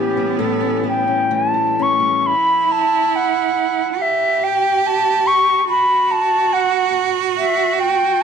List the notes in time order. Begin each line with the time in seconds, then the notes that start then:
Already playing: A2 E3 B3 C#4 E4 G4
0.17 G3
0.39 A2 E4 A4
0.61 C#4
0.83 E4
0.88 G5
1.07 C#4
1.30 E3 A3
1.34 A5
1.54 E4
1.79 C#4 C#6
2.00 G3
2.22 E4
2.26 B5
2.72 A5
3.16 F#5
3.98 G4
4.02 E5
4.44 G5
4.86 A5
5.27 C#6
5.67 F#4 B5
6.11 A5
6.53 F#5
7.38 E5
7.80 G5